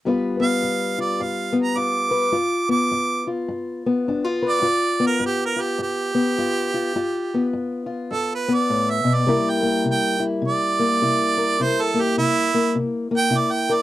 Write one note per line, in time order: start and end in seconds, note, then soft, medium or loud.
0.05 0.58 G2 medium
0.05 2.35 G3 medium
0.05 0.39 B3 medium
0.05 0.98 F4 medium
0.05 2.10 B4 medium
0.40 1.52 B3 medium
0.40 0.97 F5 loud
0.63 1.15 G2 medium
0.98 1.76 F4 medium
0.98 1.24 D5 medium
1.20 1.73 G2 medium
1.20 1.56 F5 medium
1.53 2.35 B3 medium
1.62 1.79 A#5 medium
1.76 2.29 G2 medium
1.76 2.32 F4 medium
1.76 2.67 D6 medium
2.11 2.35 B4 medium
2.32 2.86 G2 medium
2.32 3.27 F4 medium
2.69 3.86 B3 medium
2.69 3.26 D6 medium
2.91 3.45 G2 medium
3.27 4.07 F4 medium
3.48 4.02 G2 medium
3.86 4.66 B3 medium
4.08 4.60 G2 medium
4.08 4.24 D4 medium
4.24 4.61 F4 medium
4.42 4.66 B4 medium
4.49 5.03 D5 loud
4.61 5.16 G2 medium
4.61 5.56 F4 medium
5.00 6.13 B3 medium
5.07 5.24 A#4 medium
5.20 5.74 G2 medium
5.26 5.43 G4 medium
5.45 5.63 A#4 medium
5.56 6.37 F4 medium
5.61 5.80 G4 medium
5.78 6.32 G2 medium
5.83 7.50 G4 medium
6.15 6.92 B3 medium
6.38 6.91 G2 medium
6.38 6.73 F4 medium
6.74 6.93 F4 medium
6.96 7.49 G2 medium
6.96 7.85 F4 medium
7.34 8.47 B3 medium
7.53 8.07 G2 medium
7.86 9.23 F4 medium
8.11 8.64 G2 medium
8.11 8.30 A4 medium
8.35 8.55 B4 medium
8.48 9.25 B3 medium
8.54 8.91 D5 medium
8.69 9.04 A2 medium
8.90 9.15 E5 medium
9.04 9.27 B2 medium
9.14 9.52 D5 medium
9.27 9.80 C3 medium
9.27 12.77 G3 medium
9.27 9.62 A#3 medium
9.27 10.19 E4 medium
9.27 11.37 A#4 medium
9.50 9.85 G5 medium
9.63 10.79 A#3 medium
9.85 10.38 C3 medium
9.91 10.22 G5 loud
10.20 11.02 E4 medium
10.42 10.95 C3 medium
10.48 11.64 D5 loud
10.79 11.94 A#3 medium
11.02 11.54 C3 medium
11.02 11.60 E4 medium
11.37 11.63 A#4 medium
11.60 12.12 C3 medium
11.60 13.30 E4 medium
11.60 11.83 C5 loud
11.82 12.03 A4 medium
11.94 12.54 A#3 medium
12.01 12.17 G4 medium
12.17 12.70 C3 medium
12.17 12.73 E4 loud
12.54 13.10 A#3 medium
12.75 13.27 C3 medium
13.11 13.82 A#3 medium
13.17 13.39 G5 loud
13.30 13.82 C3 medium
13.30 13.82 E4 medium
13.38 13.53 D5 loud
13.52 13.75 G5 medium
13.69 13.82 A#4 medium
13.74 13.82 D5 loud